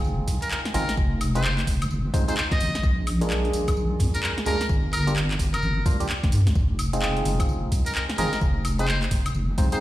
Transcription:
Already playing: G#3 C4 D#4 F4 G#4
0.04 F1, tambourine
0.28 C2, kick, open hi-hat, tambourine
0.42 A#4, closed hi-hat, tambourine
0.51 A#4, clap, tambourine
0.65 snare, closed hi-hat
0.74 G#1 G#3 C4 D#4 F4 G#4 A#4, open hi-hat, tambourine
0.89 snare, closed hi-hat, tambourine
0.97 F1, kick, tambourine
1.21 open hi-hat, tambourine, high woodblock
1.35 G#3 C4 D#4 F4 G#4 C5, closed hi-hat, tambourine
1.44 clap, tambourine
1.59 clap, closed hi-hat
1.67 F1, kick, open hi-hat, tambourine
1.82 closed hi-hat, tambourine, high woodblock
1.91 F1, tambourine
2.14 C2 G#3 C4 D#4 F4 C5, kick, open hi-hat, tambourine
2.28 G#3 C4 D#4 F4 G#4 C5, closed hi-hat, tambourine
2.37 C5, clap, tambourine
2.51 D#5, kick, snare, closed hi-hat
2.60 G#1, open hi-hat, tambourine
2.75 snare, closed hi-hat, tambourine
2.83 A#1, kick, tambourine
3.07 open hi-hat, tambourine, high woodblock
3.21 G#3 A#3 D4 F4 G#4, closed hi-hat, tambourine
3.30 clap, tambourine
3.45 closed hi-hat
3.53 A#1, open hi-hat, tambourine
3.68 kick, closed hi-hat, tambourine, high woodblock
3.76 A#1, tambourine
4.00 F2, kick, open hi-hat, tambourine
4.15 A#4, closed hi-hat, tambourine
4.23 A#4, clap, tambourine
4.38 snare, closed hi-hat
4.46 D2 G#3 A#3 D4 F4 G#4 A#4, open hi-hat, tambourine
4.61 snare, closed hi-hat, tambourine
4.69 G1, kick, tambourine
4.93 A#4, open hi-hat, tambourine, high woodblock
5.07 G3 A#3 D4 F4 G4, closed hi-hat, tambourine
5.16 clap, tambourine
5.31 clap, closed hi-hat
5.39 G1, kick, open hi-hat, tambourine
5.53 A#4, closed hi-hat, tambourine, high woodblock
5.62 G1, tambourine
5.86 D2 G3 A#3 D4 F4 C5, kick, open hi-hat, tambourine
6.00 G3 A#3 D4 F4 G4, closed hi-hat, tambourine
6.09 clap, tambourine
6.24 G1, kick, snare, closed hi-hat
6.32 G2, open hi-hat, tambourine
6.47 D2, snare, closed hi-hat, tambourine
6.55 F1, kick, tambourine
6.79 open hi-hat, tambourine, high woodblock
6.93 G#3 C4 D#4 F4 G#4, closed hi-hat, tambourine
7.02 clap, tambourine
7.17 closed hi-hat
7.25 F1, open hi-hat, tambourine
7.40 kick, closed hi-hat, tambourine, high woodblock
7.49 F1, tambourine
7.72 C2, kick, open hi-hat, tambourine
7.86 A#4, closed hi-hat, tambourine
7.95 A#4, clap, tambourine
8.10 snare, closed hi-hat
8.18 G#1 G#3 C4 D#4 F4 G#4 A#4, open hi-hat, tambourine
8.33 snare, closed hi-hat, tambourine
8.41 F1, kick, tambourine
8.65 open hi-hat, tambourine, high woodblock
8.79 G#3 C4 D#4 F4 G#4 C5, closed hi-hat, tambourine
8.88 clap, tambourine
9.02 clap, closed hi-hat
9.11 F1, kick, open hi-hat, tambourine
9.26 closed hi-hat, tambourine, high woodblock
9.34 F1, tambourine
9.58 C2 G#3 C4 D#4 F4 C5, kick, open hi-hat, tambourine
9.72 G#3 C4 D#4 F4 G#4 C5, closed hi-hat, tambourine

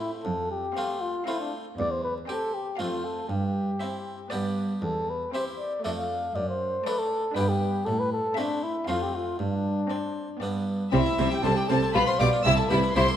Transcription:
Already playing: A2 A3 C4 E4 E5 C6
0.00 E4
0.24 F2 A4
0.51 G4
0.75 A3 C4 F4 F5 C6
1.01 F4
1.26 A3 C4 E4 F4 F5 C6
1.40 D4
1.78 E2 D5
1.91 C5
2.03 B4
2.28 C4 G4 A4 G5 C6
2.54 G4
2.78 F2 A3 C4 F4 F5 A5
3.05 A4
3.29 G2 G4
3.80 C4 E4 E5 G5
4.31 G2 B3 D4 G4 D5 G5
4.82 E2 A4
5.10 B4
5.33 C4 E4 G4 C5 E5 G5
5.59 D5
5.84 F2 A3 D4 A4 D5 E5 A5
5.97 F5
6.35 F#2 D5
6.49 C5
6.85 A3 D4 A4 B4 D5 A5
6.99 A4
7.35 G2 B3 D4 G4 B4 G5 B5
7.49 G4
7.85 A2 A4
8.00 B4
8.12 A4
8.36 A3 C4 D4 E4 E5 A5
8.63 E4
8.88 F2 A3 C4 F4 F5 A5
9.02 G4
9.15 F4
9.39 G2 D4
9.89 C4 D5 G5
10.41 G2 B3 D4 D5 G5
10.92 C2 C3 G3 C4 E4 E5
11.06 E4
11.18 C2 C3 G3 C4 C5
11.31 E4 G4 G5
11.44 C2 C3 G3 C4 A4 C5 A5
11.56 G4 D5 G5
11.69 C2 C3 G3 C4 A4 C5 A5
11.83 C4
11.94 B1 B2 G3 F4 B4 B5
12.07 F4 C5 C6
12.19 B1 B2 G3 F4 G4 D5 D6
12.33 F4
12.45 C2 C3 G3 E4 E5 E6
12.57 E4 A4 A5
12.69 C2 C3 G3 E4 G4 B4 B5
12.84 E4
12.95 C2 C3 G3 E4 G4 C5 C6
13.08 A4

